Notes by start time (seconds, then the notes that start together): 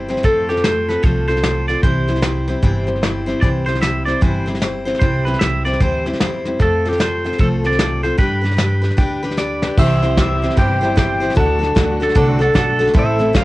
Already playing: G1
0.08 G3 C4 E4 C5, snare
0.17 snare
0.23 F2 F3 A3 C4 F4 A4, kick, snare
0.49 C4 F4 G4 A4, snare
0.57 snare
0.64 A3 C4 F4 A4 C5, snare, hi-hat pedal
0.89 C4 F4 A4 B4, snare
1.03 C2 F3 A3 C4 F4 A4 C5, kick, snare
1.28 C4 F4 A4 C5, snare
1.37 snare
1.43 A3 C4 F4 A4, snare, hi-hat pedal
1.68 C4 F4 A4 D5, snare
1.83 C2 C3 E3 G3 C4 E4 C5, kick, snare
2.08 G3 C4 E4 C5, snare
2.16 snare
2.22 G3 C4 E4 C5, snare, hi-hat pedal
2.48 G3 C4 E4 C5, snare
2.62 G1 C3 E3 G3 C4 E4 C5, kick, snare
2.87 G3 C4 E4 C5, snare
2.95 snare
3.01 G3 C4 E4 C5, snare, hi-hat pedal
3.26 G3 C4 E4 C5, snare
3.41 C2 C3 E3 G3 C4 E4 C5 D5, kick, snare
3.66 G3 C4 E4 C5, snare
3.75 snare
3.80 G3 C4 E4 C5 E5, snare, hi-hat pedal
4.05 G3 C4 E4 C5 D5, snare
4.21 G1 C3 E3 G3 C4 E4 C5, kick, snare
4.46 G3 C4 E4 C5, snare
4.55 snare
4.60 G3 C4 E4 C5, snare, hi-hat pedal
4.85 G3 C4 E4 C5, snare
4.95 snare
4.99 C2 C3 E3 G3 C4 E4 C5, kick, snare
5.25 G3 C4 E4 B4 C5, snare
5.34 snare
5.39 C2 G3 C4 E4 C5 E5, snare, hi-hat pedal
5.65 G3 C4 E4 C5 D5, snare
5.73 snare
5.80 D2 C3 E3 G3 C4 E4 C5, kick, snare
6.06 G3 C4 E4 C5, snare
6.13 snare
6.20 E2 G3 C4 E4 C5, snare, hi-hat pedal
6.45 G3 C4 E4 C5, snare
6.60 F2 F3 A3 C4 F4 A4, kick, snare
6.85 C4 F4 G4 A4, snare
6.92 snare
6.98 A3 C4 F4 A4 C5, snare, hi-hat pedal
7.24 C4 F4 A4, snare
7.33 snare
7.38 C2 F3 A3 C4 F4 A4, kick, snare
7.64 C4 F4 A4 D5, snare
7.72 snare
7.79 A3 C4 F4 A4, snare, hi-hat pedal
8.03 C4 F4 A4 C5, snare
8.18 G2 G3 D4 G4 B4, kick, snare
8.41 D4 G4 B4, snare
8.51 snare
8.57 G3 D4 G4 B4, snare, hi-hat pedal
8.81 D4 G4 B4, snare
8.90 snare
8.97 D2 G3 D4 G4 B4, kick, snare
9.22 D4 G4 B4, snare
9.31 snare
9.37 G3 D4 G4 B4 D5, snare, hi-hat pedal
9.62 D4 G4 B4, snare
9.77 C2 C3 E3 G3 C4 E4 G4 C5 E5, kick, snare, crash
10.02 G3 C4 E4 C5, snare
10.17 G3 C4 E4 G4 C5 E5, kick, snare, hi-hat pedal
10.42 G3 C4 E4 C5, snare
10.50 snare
10.56 G1 C3 E3 G3 C4 E4 G4 C5 E5 G5, kick, snare
10.80 G3 C4 E4 G4 C5, snare
10.85 E5
10.95 G3 C4 E4 G4 C5 E5 G5, kick, snare, hi-hat pedal
11.20 G3 C4 E4 C5, snare
11.30 snare
11.34 D2 D3 F#3 A3 D4 F#4 A4 D5 F#5 A5, kick, snare
11.59 D4 F#4 A4
11.63 snare
11.75 D2 A3 D4 F#4 A4 D5 F#5, kick, snare, hi-hat pedal
12.00 D4 F#4 A4, snare
12.09 snare
12.15 C2 D3 A3 D4 F#4 A4 D5 F#5, kick, snare
12.29 C4
12.39 D4 F#4 A4 D5 F#5, snare
12.54 B1 A3 D4 F#4 A4 D5 F#5, kick, snare, hi-hat pedal
12.79 D4 F#4 A4, snare
12.87 snare
12.93 A1 A2 C3 E3 A3 C4 E4 A4 C5 E5, kick, snare
12.99 E5
13.19 A3 C4 E4 A4, snare
13.33 A3 C4 E4 A4 C5 D5 F5, kick, snare, hi-hat pedal